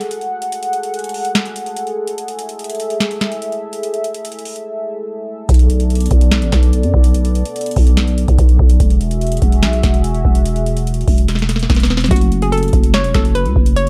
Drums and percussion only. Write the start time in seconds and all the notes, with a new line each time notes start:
0.01 closed hi-hat
0.11 closed hi-hat
0.21 closed hi-hat
0.42 closed hi-hat
0.52 closed hi-hat
0.63 closed hi-hat
0.73 closed hi-hat
0.83 closed hi-hat
0.94 closed hi-hat
0.99 closed hi-hat
1.04 closed hi-hat
1.09 closed hi-hat
1.14 open hi-hat
1.25 closed hi-hat
1.35 snare, closed hi-hat
1.46 closed hi-hat
1.56 closed hi-hat
1.66 closed hi-hat
1.77 closed hi-hat
1.87 closed hi-hat
2.08 closed hi-hat
2.18 closed hi-hat
2.28 closed hi-hat
2.39 closed hi-hat
2.49 closed hi-hat
2.59 closed hi-hat
2.64 closed hi-hat
2.70 closed hi-hat
2.75 closed hi-hat
2.80 closed hi-hat
2.90 closed hi-hat
3.00 snare, closed hi-hat
3.11 closed hi-hat
3.21 snare, closed hi-hat
3.32 closed hi-hat
3.42 closed hi-hat
3.52 closed hi-hat
3.73 closed hi-hat
3.83 closed hi-hat
3.94 closed hi-hat
4.04 closed hi-hat
4.14 closed hi-hat
4.25 closed hi-hat
4.32 closed hi-hat
4.39 closed hi-hat
4.45 open hi-hat
4.56 closed hi-hat
5.49 kick, closed hi-hat
5.54 closed hi-hat
5.59 closed hi-hat
5.70 closed hi-hat
5.80 closed hi-hat
5.90 closed hi-hat
5.95 closed hi-hat
6.00 closed hi-hat
6.06 closed hi-hat
6.11 kick, closed hi-hat
6.21 closed hi-hat
6.31 snare, closed hi-hat
6.42 closed hi-hat
6.52 kick, snare, closed hi-hat
6.63 closed hi-hat
6.73 closed hi-hat
6.83 closed hi-hat
6.94 kick
7.04 closed hi-hat
7.14 closed hi-hat
7.25 closed hi-hat
7.35 closed hi-hat
7.45 closed hi-hat
7.56 closed hi-hat
7.61 closed hi-hat
7.66 closed hi-hat
7.71 closed hi-hat
7.76 kick, open hi-hat
7.87 closed hi-hat
7.97 snare, closed hi-hat
8.08 closed hi-hat
8.18 closed hi-hat
8.28 kick, closed hi-hat
8.39 kick, closed hi-hat
8.49 closed hi-hat
8.59 kick
8.70 closed hi-hat
8.80 kick, closed hi-hat
8.90 closed hi-hat
9.01 closed hi-hat
9.11 closed hi-hat
9.21 closed hi-hat
9.27 closed hi-hat
9.32 closed hi-hat
9.37 closed hi-hat
9.42 kick, closed hi-hat
9.52 closed hi-hat
9.63 snare, closed hi-hat
9.73 closed hi-hat
9.83 kick, snare, closed hi-hat
9.94 closed hi-hat
10.04 closed hi-hat
10.14 closed hi-hat
10.25 kick
10.35 closed hi-hat
10.46 closed hi-hat
10.56 closed hi-hat
10.66 closed hi-hat
10.77 closed hi-hat
10.87 closed hi-hat
10.94 closed hi-hat
11.01 closed hi-hat
11.08 kick, open hi-hat
11.18 closed hi-hat
11.28 snare, closed hi-hat
11.35 snare, closed hi-hat
11.42 snare
11.49 snare, closed hi-hat
11.56 snare, closed hi-hat
11.63 snare
11.70 kick, snare, closed hi-hat
11.75 snare, closed hi-hat
11.80 snare, closed hi-hat
11.85 closed hi-hat
11.90 snare
11.97 snare, closed hi-hat
12.04 snare, closed hi-hat
12.11 kick, closed hi-hat
12.16 closed hi-hat
12.21 closed hi-hat
12.32 closed hi-hat
12.42 closed hi-hat
12.52 closed hi-hat
12.58 closed hi-hat
12.63 closed hi-hat
12.68 closed hi-hat
12.73 kick, closed hi-hat
12.83 closed hi-hat
12.94 snare, closed hi-hat
13.04 closed hi-hat
13.14 kick, snare, closed hi-hat
13.25 closed hi-hat
13.35 closed hi-hat
13.46 closed hi-hat
13.56 kick
13.66 closed hi-hat
13.77 closed hi-hat